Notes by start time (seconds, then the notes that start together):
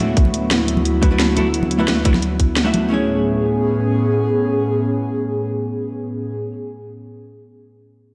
Already playing: A3 B3 D4 E4 F#4 E5
0.00 D2 F#3 E4
0.17 kick, closed hi-hat
0.25 high conga
0.34 closed hi-hat
0.51 snare, closed hi-hat, high conga
0.68 closed hi-hat
0.77 high conga
0.85 closed hi-hat
1.02 A3 D4 E4 F#4 B4, kick, closed hi-hat, high conga
1.10 A3 D4 E4 F#4 B4
1.20 snare, closed hi-hat
1.36 A3 D4 E4 F#4 A4, closed hi-hat, high conga
1.54 closed hi-hat
1.63 high conga
1.71 closed hi-hat
1.79 A3 D4 E4 F#4 B4
1.88 snare, closed hi-hat, high conga
2.04 A3 D4 E4 F#4 B4, kick, closed hi-hat
2.14 snare, high conga
2.22 closed hi-hat
2.40 kick, closed hi-hat, high conga
2.57 snare, closed hi-hat
2.65 A3 D4 E4 F#4 E5
2.74 closed hi-hat, high conga
2.89 A2 A3 B3 C#4 E4 G#4
2.94 C#5